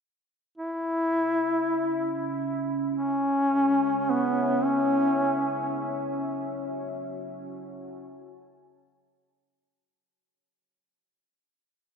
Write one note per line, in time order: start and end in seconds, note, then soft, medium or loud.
0.58 9.94 C#4 medium
0.58 2.30 E4 loud
2.37 5.26 G#4 medium
2.70 9.94 C#5 medium
2.70 7.12 E5 medium
2.94 4.12 C#4 loud
4.10 4.67 B3 medium
4.65 5.83 C#4 medium
5.68 9.95 F#4 medium
7.21 9.95 A5 medium
7.37 9.95 G#5 medium